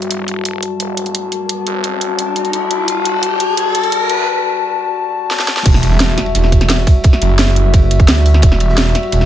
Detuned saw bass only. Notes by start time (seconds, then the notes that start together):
0.11 E1
0.80 E1
1.67 F#1
2.53 D2
2.88 E1
3.57 E1
4.09 E2
5.66 E1
6.35 E1
7.22 F#1
8.08 D2
8.43 E1
9.12 E1